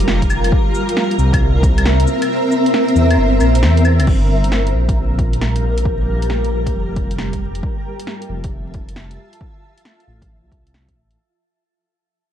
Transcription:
Already playing: detuned saw bass F1, ambient pad G3 F4 A#4
0.00 closed hi-hat, cabasa
0.08 snare
0.22 kick, closed hi-hat
0.30 cabasa, claves
0.44 closed hi-hat, claves
0.52 ambient pad C4 E5, kick
0.75 cabasa
0.89 closed hi-hat
0.97 snare
1.11 closed hi-hat
1.18 detuned saw bass C2, cabasa
1.33 kick, closed hi-hat, claves
1.63 kick, closed hi-hat, cabasa
1.78 closed hi-hat, claves
1.85 snare
2.00 closed hi-hat
2.07 cabasa
2.22 closed hi-hat, claves
2.52 cabasa
2.66 closed hi-hat
2.74 snare
2.88 closed hi-hat
2.96 detuned saw bass E2, cabasa
3.11 closed hi-hat, claves
3.18 detuned saw bass G1
3.40 detuned saw bass A#1, closed hi-hat, cabasa, claves
3.55 closed hi-hat, cabasa
3.62 detuned saw bass E2, snare
3.77 closed hi-hat
3.85 cabasa, claves
3.99 detuned saw bass C2, closed hi-hat, claves
4.07 detuned saw bass G1, ambient pad G3 F4 A#4, kick, crash
4.44 closed hi-hat
4.52 snare
4.67 closed hi-hat
4.75 detuned saw bass A#1
4.89 kick, closed hi-hat
5.19 kick, closed hi-hat
5.33 closed hi-hat
5.41 snare
5.56 closed hi-hat
5.63 detuned saw bass A#1
5.78 closed hi-hat
5.85 ambient pad G4, kick
6.22 closed hi-hat
6.30 snare
6.45 closed hi-hat
6.52 detuned saw bass A#1
6.66 kick, closed hi-hat
6.74 detuned saw bass F1
6.96 kick, closed hi-hat
7.11 closed hi-hat
7.18 snare
7.33 kick, closed hi-hat
7.55 closed hi-hat
7.63 ambient pad F4 E5 A5, kick
8.00 closed hi-hat
8.07 snare
8.22 closed hi-hat
8.29 detuned saw bass F1
8.44 kick, closed hi-hat
8.74 kick, closed hi-hat
8.89 closed hi-hat
8.96 snare
9.11 closed hi-hat
9.33 closed hi-hat
9.41 kick
9.78 closed hi-hat
9.85 snare
10.00 closed hi-hat
10.08 detuned saw bass A1
10.22 kick, closed hi-hat
10.43 detuned saw bass C2
10.52 kick, closed hi-hat
10.67 closed hi-hat
10.74 snare
10.88 kick, closed hi-hat
10.96 detuned saw bass A1
11.11 closed hi-hat

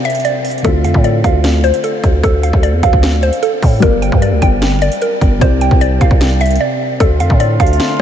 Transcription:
Already playing: grand piano C3 C4 G4 D5
0.05 synth pluck E5, closed hi-hat
0.10 closed hi-hat
0.15 closed hi-hat
0.20 closed hi-hat
0.25 synth pluck D5, closed hi-hat
0.45 closed hi-hat, open hi-hat
0.51 closed hi-hat
0.58 closed hi-hat
0.62 808-style bass D2, grand piano D3 A3 C4, synth pluck A4, kick, closed hi-hat
0.67 grand piano F4
0.84 808-style bass F2, synth pluck F5, closed hi-hat
0.94 808-style bass A2, kick
1.04 synth pluck D5, closed hi-hat
1.24 808-style bass D2, synth pluck F5, kick, closed hi-hat
1.44 snare, closed hi-hat
1.64 synth pluck C5, closed hi-hat
1.74 closed hi-hat
1.84 synth pluck A4, closed hi-hat
2.04 808-style bass D2, kick, closed hi-hat
2.23 808-style bass D2, synth pluck A4, kick, closed hi-hat
2.43 synth pluck F5, closed hi-hat
2.53 808-style bass D2, kick
2.63 synth pluck D5, closed hi-hat
2.73 808-style bass E2
2.83 808-style bass D2, synth pluck F5, kick, closed hi-hat
2.93 kick
3.03 snare, closed hi-hat
3.23 synth pluck C5, closed hi-hat
3.33 closed hi-hat
3.43 synth pluck A4, closed hi-hat
3.62 808-style bass A2, kick, open hi-hat
3.80 808-style bass G1, grand piano G3 G4 A#4, synth pluck A#4, kick, closed hi-hat
3.84 grand piano D5
4.02 synth pluck G5, closed hi-hat
4.12 808-style bass G2, kick
4.22 synth pluck D5, closed hi-hat
4.32 808-style bass D2
4.42 808-style bass G1, synth pluck G5, kick, closed hi-hat
4.62 snare, closed hi-hat
4.82 synth pluck D5, closed hi-hat
4.92 closed hi-hat
5.02 synth pluck A#4, closed hi-hat
5.21 808-style bass G1, kick, closed hi-hat
5.39 808-style bass C2, grand piano C3 C4 G4, synth pluck C5, kick, closed hi-hat
5.44 grand piano D5
5.61 synth pluck G5, closed hi-hat
5.71 808-style bass C2, kick
5.81 synth pluck D5, closed hi-hat
6.01 808-style bass C2, synth pluck F5, kick, closed hi-hat
6.11 808-style bass C2, kick
6.21 snare, closed hi-hat
6.41 synth pluck E5, closed hi-hat
6.46 closed hi-hat
6.51 closed hi-hat
6.56 closed hi-hat
6.61 synth pluck D5
7.00 808-style bass D2, brass ensemble D3 A3 C4 F4, synth pluck A4, kick, closed hi-hat
7.20 808-style bass F2, synth pluck F5, closed hi-hat
7.30 808-style bass A2, kick
7.40 synth pluck D5, closed hi-hat
7.60 808-style bass D2, synth pluck F5, kick, closed hi-hat
7.66 closed hi-hat
7.73 closed hi-hat
7.80 snare, closed hi-hat

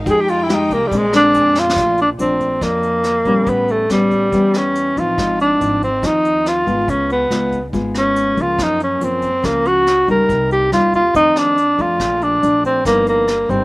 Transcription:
Already playing: string section D#4
0.06 upright bass F2, nylon-string guitar F3 G#3 D#4 G4, string section G#3 G5, kick, closed hi-hat
0.10 tenor saxophone G#4
0.21 tenor saxophone G4
0.28 tenor saxophone F4, closed hi-hat
0.43 tenor saxophone E4
0.49 nylon-string guitar G#3 D#4 G4, cross-stick, closed hi-hat
0.54 tenor saxophone D#4
0.70 upright bass C2, tenor saxophone A#3, kick, closed hi-hat
0.87 tenor saxophone G3
0.91 upright bass A#1, nylon-string guitar A#2 G#3 C4 D4, string section C4 G#4 D5, kick, closed hi-hat
0.97 tenor saxophone G#3
1.13 nylon-string guitar G#3 C4 D4, tenor saxophone D4, cross-stick, closed hi-hat
1.34 upright bass F2, closed hi-hat
1.55 snare
1.59 tenor saxophone F4
1.69 snare
1.76 upright bass A#1, nylon-string guitar A#2 F3 A3 D4, kick, cross-stick, closed hi-hat
1.98 tenor saxophone D4, closed hi-hat
2.19 upright bass A#1, nylon-string guitar F3 A3 D4, tenor saxophone C4, closed hi-hat
2.40 kick, closed hi-hat
2.61 nylon-string guitar F2 F3 D4, upright bass F2, tenor saxophone A#3, kick, cross-stick, closed hi-hat
2.83 closed hi-hat
3.04 cross-stick, closed hi-hat
3.25 upright bass A#1, nylon-string guitar G3 B3 C#4, kick, closed hi-hat
3.46 upright bass A1, nylon-string guitar A2, tenor saxophone B3, kick, closed hi-hat
3.68 tenor saxophone A3, closed hi-hat
3.90 upright bass A1, nylon-string guitar G3 B3 C#4, tenor saxophone G3, cross-stick, closed hi-hat
4.11 kick, closed hi-hat
4.32 upright bass E2, nylon-string guitar E3 G3 B3 C#4, kick, closed hi-hat
4.54 tenor saxophone C#4, cross-stick, closed hi-hat
4.75 closed hi-hat
4.96 upright bass A1, nylon-string guitar F3 C4 D#4, tenor saxophone F4, kick, closed hi-hat
5.18 upright bass G#1, nylon-string guitar G#2, kick, cross-stick, closed hi-hat
5.39 tenor saxophone D4, closed hi-hat
5.60 upright bass G#1, nylon-string guitar F3 C4 D#4, closed hi-hat
5.82 tenor saxophone C4, kick, closed hi-hat
6.02 upright bass D#2, nylon-string guitar D#3 F3 C4 D#4, tenor saxophone D#4, kick, cross-stick, closed hi-hat
6.25 closed hi-hat
6.46 tenor saxophone F4, cross-stick, closed hi-hat
6.66 upright bass G#1, nylon-string guitar G#3 B3 F4, kick, closed hi-hat
6.87 upright bass C#2, nylon-string guitar C#3, tenor saxophone C#4, kick, closed hi-hat
7.10 tenor saxophone B3, closed hi-hat
7.30 upright bass C#2, nylon-string guitar G#3 B3 F4, cross-stick, closed hi-hat
7.52 kick, closed hi-hat
7.73 upright bass G#1, nylon-string guitar G#2 G#3 B3 F4, kick, closed hi-hat
7.95 tenor saxophone C#4, cross-stick, closed hi-hat
8.16 closed hi-hat
8.37 upright bass C#2, nylon-string guitar F3 A#3 C#4, kick, closed hi-hat
8.41 tenor saxophone F4
8.58 nylon-string guitar F#2, upright bass F#2, kick, cross-stick, closed hi-hat
8.62 tenor saxophone D#4
8.80 tenor saxophone C#4, closed hi-hat
9.00 upright bass F#2, nylon-string guitar F3 A#3 C#4, tenor saxophone C4, closed hi-hat
9.22 kick, closed hi-hat
9.43 upright bass C#2, nylon-string guitar C#3 F3 A#3 C#4, tenor saxophone A#3, kick, cross-stick, closed hi-hat
9.65 tenor saxophone F#4, closed hi-hat
9.87 cross-stick, closed hi-hat
10.07 upright bass C#2, nylon-string guitar G3 A#3 D#4, tenor saxophone A#4, kick, closed hi-hat
10.29 upright bass C2, nylon-string guitar C3, kick, closed hi-hat
10.51 tenor saxophone G4, closed hi-hat
10.72 upright bass D#2, nylon-string guitar G3 A#3 D#4, tenor saxophone F4, cross-stick, closed hi-hat
10.93 tenor saxophone F4, kick, closed hi-hat
11.14 nylon-string guitar F2 D#3 A3 C4, upright bass F2, tenor saxophone D#4, kick, closed hi-hat
11.36 tenor saxophone D4, cross-stick, closed hi-hat
11.57 closed hi-hat
11.78 upright bass F2, nylon-string guitar F3 A3 D4, tenor saxophone F4, kick, closed hi-hat
11.99 upright bass A#1, nylon-string guitar A#2, kick, cross-stick, closed hi-hat
12.21 tenor saxophone D4, closed hi-hat
12.42 upright bass A#1, nylon-string guitar F3 A3 D4, closed hi-hat
12.64 tenor saxophone C4, kick, closed hi-hat
12.85 upright bass G1, nylon-string guitar G2 F3 B3 D#4, tenor saxophone A#3, kick, cross-stick, closed hi-hat
13.06 tenor saxophone A#3, closed hi-hat
13.28 cross-stick, closed hi-hat
13.49 upright bass G1, nylon-string guitar G3 A#3 D#4, tenor saxophone C4, kick, closed hi-hat

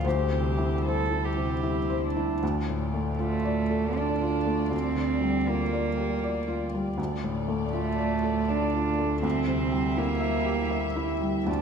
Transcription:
Already playing: double bass D2
0.05 felt piano D2 C5, string section G3 E4 C5, cello G4
0.32 felt piano C3
0.58 felt piano E4
0.85 cello A4, felt piano C5
1.10 felt piano E4
1.24 cello G4
1.37 felt piano C3
1.63 felt piano E4
1.90 felt piano C5
2.05 cello D4
2.16 felt piano E4
2.42 felt piano D2, double bass D2, string section A3 F4 D5
2.69 felt piano A2
2.94 felt piano A3
3.19 cello A3, felt piano F4
3.45 felt piano D5
3.71 felt piano A4
3.97 cello D4, felt piano D5
4.21 felt piano F4
4.46 felt piano A3
4.71 felt piano D2, cello C4
4.75 string section G3
4.95 felt piano D3
5.21 felt piano G3
5.46 cello A#3, felt piano F4
5.73 felt piano D5
5.98 felt piano G4
6.23 felt piano D5
6.48 felt piano F4
6.75 felt piano G3
6.98 felt piano D2, double bass D2, string section A3 F4 D5
7.24 felt piano A2
7.48 felt piano A3
7.71 cello A3, felt piano F4
7.99 felt piano D5
8.23 felt piano A4
8.49 cello D4, felt piano D5
8.75 felt piano F4
8.99 felt piano A3
9.22 felt piano D2, string section G3 E4 E5, cello C4
9.47 felt piano C3
9.71 felt piano G3
9.97 cello A#3, felt piano E4
10.20 felt piano E5
10.45 felt piano G4
10.71 felt piano E5
10.96 felt piano E4
11.21 felt piano G3
11.46 felt piano D2, double bass D2, string section A3 F4 D5, cello D4

